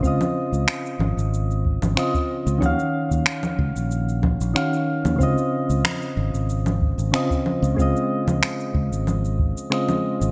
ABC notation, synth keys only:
X:1
M:4/4
L:1/8
Q:1/4=93
K:Db
V:1 name="Synth keys"
[D,CFe]6 [D,CFe]2 | [E,DGf]6 [E,DGf]2 | [D,CFe]6 [D,CFe]2 | [D,A,CFe]6 [D,A,CFe]2 |]